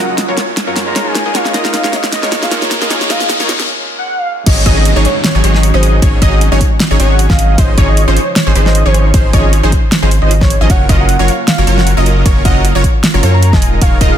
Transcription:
Already playing: G#3 A#3 C#4 F4 A#4 C#5, riser
0.00 F#1 F#3 C#4 F4 A#4 D#5 F#5
0.18 snare, closed hi-hat
0.28 F#1 F#3 C#4 F4 A#4 C#5
0.37 snare, closed hi-hat
0.57 snare, closed hi-hat
0.67 F#2 F#3 C#4 F4 A#4 C#5
0.76 snare, closed hi-hat
0.86 G#3 A#3 C#4 F4 A#5
0.96 D#1 G#3 D#4 F4 A#4 C#5, snare, closed hi-hat
1.06 G#5
1.15 D#4 G#4 C#5 F5, snare, closed hi-hat
1.26 D#1 G#3 D#4 F4 A#4 D#5
1.33 D#1 G#3 A#3 C#4 D#4 F4 A#4 C#5 F5, snare, closed hi-hat
1.45 snare
1.54 D#1 G#3 D#4 F4 A#4 D#5, snare, closed hi-hat
1.65 F5, snare
1.74 snare, closed hi-hat
1.84 D#1 G#3 D#4 F4 A#4 C#5, snare
1.93 D#5, snare, closed hi-hat
2.04 snare
2.12 D#5, snare, closed hi-hat
2.23 D#1 G#3 D#4 F4 A#4 C#5, snare
2.32 snare, closed hi-hat
2.41 G#3 A#3 C#4 F5, snare
2.45 F4
2.51 D#1 G#3 D#4 F4 A#4 C#5, snare, closed hi-hat
2.62 C#5, snare
2.71 snare, closed hi-hat
2.82 D#1 G#3 D#4 F4 A#4 D#5, snare
2.89 D#1 G#3 A#3 C#4 D#4 F4 A#4 C#5, snare, closed hi-hat
2.93 F4
3.01 snare
3.10 D#1 G#3 D#4 F4 A#4 D#5 F5, snare, closed hi-hat
3.21 snare
3.30 snare, closed hi-hat
3.40 D#1 G#3 D#4 F4 A#4 C#5, snare
3.49 snare, closed hi-hat
3.60 snare
3.98 F#5
4.18 F5
4.46 G#1 D#3 F#3 G#3 C#4 D#4 F#4 G#4 C#5 D#5, kick, closed hi-hat, crash, ride, downlifter
4.66 G#1 F#3 C#4 D#4 G#4 D#5, kick, closed hi-hat
4.77 D#5
4.85 closed hi-hat
4.96 G#1 F#3 C#4 D#4 G#4 C#5
5.05 C#5, closed hi-hat
5.24 C#5, snare, closed hi-hat, ride
5.35 G#1 F#3 C#4 D#4 G#4 C#5
5.44 G#1 F#3 C#4 D#4 G#4 C#5, closed hi-hat
5.54 D#5, snare
5.63 closed hi-hat
5.74 G#1 F#3 C#4 D#4 G#4 C5 D#5
5.83 closed hi-hat
6.02 G#1 F#3 C#4 D#4 G#4 C#5, kick, closed hi-hat, ride
6.22 G#1 F#3 C#4 D#4 G#4 D#5, kick, closed hi-hat
6.41 closed hi-hat
6.52 G#1 F#3 C#4 D#4 G#4 C#5
6.61 kick, closed hi-hat
6.80 snare, closed hi-hat, ride
6.91 G#1 F#3 C#4 D#4 G#4 C#5
7.00 G#1 F#3 C#4 D#4 G#4 C#5, closed hi-hat
7.10 F#5
7.19 closed hi-hat
7.30 G#1 F#3 C#4 D#4 G#4 D#5 F5, kick, snare
7.39 closed hi-hat
7.58 G#1 C#3 F3 C#4 D#4 G#4 C5 D#5, kick, closed hi-hat, ride
7.78 G#1 F3 C#4 D#4 G#4 C#5, kick, closed hi-hat
7.88 D#5
7.97 closed hi-hat
8.08 G#1 F3 C#4 D#4 G#4 C5
8.17 C#5, closed hi-hat
8.36 C#5, snare, closed hi-hat, ride
8.47 G#1 F3 C#4 D#4 G#4 C5
8.56 G#1 F3 C#4 D#4 G#4 C5, closed hi-hat
8.66 D#5, snare
8.75 closed hi-hat
8.85 G#1 F3 C#4 D#4 G#4 C5 C#5
8.94 closed hi-hat
9.14 G#1 F3 C#4 D#4 G#4 C5, kick, closed hi-hat, ride
9.33 G#1 F3 C#4 D#4 G#4 C#5 D#5, kick, closed hi-hat
9.53 closed hi-hat
9.63 G#1 F3 C#4 D#4 G#4 C5
9.72 kick, closed hi-hat
9.92 snare, closed hi-hat, ride
10.02 G#1 F3 C#4 D#4 G#4 C5
10.11 closed hi-hat
10.22 G#1 F3 C#4 D#4 G#4 C5 D#5
10.31 closed hi-hat
10.41 C#5, kick, snare
10.50 closed hi-hat
10.61 G#1 F3 C#4 D#4 G#4 D#5
10.70 F#1 F#3 A#3 C#4 F4 A#4 C#5 F#5, kick, closed hi-hat, ride
10.89 F#1 F#3 C#4 F4 A#4 D#5, kick, closed hi-hat
11.00 F#5
11.09 closed hi-hat
11.19 F#1 F#3 C#4 F4 A#4 C#5
11.28 F5, closed hi-hat
11.48 F5, snare, closed hi-hat, ride
11.58 F#1 F#3 C#4 F4 A#4 C#5
11.67 F#1 F#3 C#4 F4 A#4 C#5, closed hi-hat
11.78 F#5, snare
11.87 closed hi-hat
11.97 F#1 F#3 C#4 F4 A#4 D#5
12.06 closed hi-hat
12.25 F#1 F#3 C#4 F4 A#4 C#5, kick, closed hi-hat, ride
12.45 F#1 F#3 C#4 F4 A#4 D#5 F#5, kick, closed hi-hat
12.65 closed hi-hat
12.75 F#1 F#3 C#4 F4 A#4 C#5
12.84 kick, closed hi-hat
13.04 snare, closed hi-hat, ride
13.14 F#1 F#3 C#4 F4 A#4 C#5
13.23 F#2 F#3 C#4 F4 A#4 C#5, closed hi-hat
13.34 A#5
13.43 closed hi-hat
13.53 D#1 G#3 D#4 F4 A#4 D#5 G#5, kick, snare
13.62 F3 G#3 D#4, closed hi-hat
13.81 D#1 G#3 D#4 F4 A#4 C#5 F5, kick, closed hi-hat, ride
14.01 D#1 G#3 D#4 F4 A#4 D#5, kick, closed hi-hat
14.12 F5

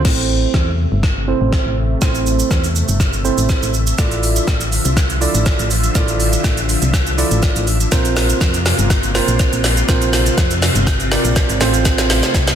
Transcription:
0.05 A1 C3 A3 E5, kick, snare, crash
0.54 E2, kick, snare
0.92 G1
1.03 kick, snare
1.28 C4 E4 A4 C5
1.41 A1
1.53 kick, snare
1.66 A1
2.01 A1 C4 E4 A4 C5, kick, snare, shaker
2.15 shaker
2.26 shaker
2.39 shaker
2.51 E2, kick, snare, shaker
2.64 shaker
2.76 shaker
2.88 G1, shaker
3.00 kick, snare, shaker
3.13 shaker
3.24 C4 E4 A4 C5, shaker
3.38 A1, shaker
3.49 kick, snare, shaker
3.62 A1, shaker
3.74 shaker
3.87 shaker
3.98 A1 D3 F3 E4 F4 A4 D5, kick, snare, closed hi-hat, shaker
4.11 closed hi-hat, shaker
4.23 open hi-hat, shaker
4.36 closed hi-hat, shaker
4.47 A1, kick, snare, closed hi-hat, shaker
4.61 closed hi-hat, shaker
4.72 open hi-hat, shaker
4.85 C2, closed hi-hat, shaker
4.97 kick, snare, closed hi-hat, shaker
5.10 closed hi-hat, shaker
5.21 E4 F4 A4 D5, open hi-hat, shaker
5.35 A1, closed hi-hat, shaker
5.46 kick, snare, closed hi-hat, shaker
5.59 A1, closed hi-hat, shaker
5.71 open hi-hat, shaker
5.84 closed hi-hat, shaker
5.95 A1 E4 F4 A4 D5, kick, snare, closed hi-hat, shaker
6.08 closed hi-hat, shaker
6.20 open hi-hat, shaker
6.33 closed hi-hat, shaker
6.44 A1, kick, snare, closed hi-hat, shaker
6.57 closed hi-hat, shaker
6.69 open hi-hat, shaker
6.82 C2, closed hi-hat, shaker
6.93 kick, snare, closed hi-hat, shaker
7.07 closed hi-hat, shaker
7.18 E4 F4 A4 D5, open hi-hat, shaker
7.31 A1, closed hi-hat, shaker
7.43 kick, snare, closed hi-hat, shaker
7.56 A1, closed hi-hat, shaker
7.67 open hi-hat, shaker
7.80 closed hi-hat, shaker
7.92 A#1 C3 A#3 C4 F4 A#4 C5, kick, snare, closed hi-hat, shaker
8.05 closed hi-hat, shaker
8.17 snare, open hi-hat, shaker
8.30 closed hi-hat, shaker
8.41 F2, kick, snare, closed hi-hat, shaker
8.54 closed hi-hat, shaker
8.66 snare, open hi-hat, shaker
8.79 G1, closed hi-hat, shaker
8.90 kick, snare, closed hi-hat, shaker
9.03 closed hi-hat, shaker
9.15 C4 F4 A#4 C5, snare, open hi-hat, shaker
9.28 A#1, closed hi-hat, shaker
9.39 kick, snare, closed hi-hat, shaker
9.53 A#1, closed hi-hat, shaker
9.64 snare, open hi-hat, shaker
9.77 closed hi-hat, shaker
9.88 A#1 C4 F4 A#4 C5, kick, snare, closed hi-hat, shaker
10.02 closed hi-hat, shaker
10.13 snare, open hi-hat, shaker
10.26 closed hi-hat, shaker
10.38 F2, kick, snare, closed hi-hat, shaker
10.51 closed hi-hat, shaker
10.62 snare, open hi-hat, shaker
10.75 G1, closed hi-hat, shaker
10.87 kick, snare, closed hi-hat, shaker
11.00 closed hi-hat, shaker
11.11 C4 F4 A#4 D5, snare, open hi-hat, shaker
11.25 A#1, closed hi-hat, shaker
11.36 kick, snare, closed hi-hat, shaker
11.49 G#1, closed hi-hat, shaker
11.60 A1 A3 C4 F4 A4 C5, snare, open hi-hat, shaker
11.74 closed hi-hat, shaker
11.85 kick, snare, closed hi-hat, shaker
11.98 snare, closed hi-hat, shaker
12.10 snare, open hi-hat, shaker
12.23 snare, closed hi-hat, shaker
12.34 C2, kick, snare, closed hi-hat, shaker
12.47 snare, closed hi-hat, shaker

